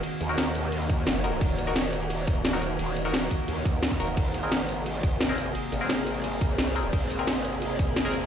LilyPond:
<<
  \new Staff \with { instrumentName = "Synth stab" } { \time 4/4 \key ees \dorian \tempo 4 = 174 r8. <ees' ges' bes'>2~ <ees' ges' bes'>8. <ees' ges' bes'>16 r16 | r8. <ees' ges' bes'>16 r2 r16 <ees' ges' bes'>16 r8 | r8. <ees' ges' bes'>2~ <ees' ges' bes'>8. <ees' ges' bes'>16 r16 | r8. <c' aes' bes'>16 r2 r16 <c' aes' bes'>16 r8 |
r8. <c' aes' bes'>2~ <c' aes' bes'>8. <c' aes' bes'>16 r16 | r8. <c' aes' bes'>16 r2 r16 <c' aes' bes'>16 r8 | }
  \new Staff \with { instrumentName = "Synth drone" } { \time 4/4 \key ees \dorian << { <ees ges'>1~ | <ees ges'>1~ | <ees ges'>1 | <c aes'>1~ |
<c aes'>1~ | <c aes'>1 | } \\ { bes1~ | bes1~ | bes1~ | bes1~ |
bes1~ | bes1 | } >> }
  \new Staff \with { instrumentName = "Wobble bass" } { \clef bass \time 4/4 \key ees \dorian r8 ees,2~ ees,8 ges,,4 | ees,,1 | ees,,4. r8 ees,4. ees,,8 | aes,,1 |
r8 aes,,2~ aes,,8 c,4 | aes,,1 | }
  \new DrumStaff \with { instrumentName = "Drums" } \drummode { \time 4/4 <hh rb>8 <hh rb tamb>8 <hh rb sn>8 <hh rb tamb>8 <hh rb tamb>16 tamb16 <hh bd rb tamb>8 <hh rb sn>8 <hh rb tamb>8 | <hh bd rb>8 <hh rb tamb>8 <hh rb sn>8 <hh rb tamb>8 <hh rb tamb>16 tamb16 <hh bd rb tamb>8 <hh rb sn>8 <hh rb tamb>8 | <hh rb>8 <hh rb tamb>8 <hh rb sn>8 <hh bd rb tamb>8 <hh rb tamb>16 tamb16 <hh bd rb tamb>8 <hh rb sn>16 bd16 <hh rb tamb>8 | <hh bd rb>8 <hh rb tamb>8 <hh rb sn>8 <hh rb tamb>8 <hh rb tamb>16 tamb16 <hh bd rb tamb>8 <hh rb sn>8 <hh rb tamb>8 |
<hh rb>8 <hh rb tamb>8 <hh rb sn>8 <hh rb tamb>8 <hh rb tamb>16 tamb16 <hh bd rb tamb>8 <hh rb sn>8 <hh rb tamb>8 | <hh bd rb>8 <hh rb tamb>8 <hh rb sn>8 <hh rb tamb>8 <hh rb tamb>16 tamb16 <hh bd rb tamb>8 <hh rb sn>8 <hh rb tamb>8 | }
>>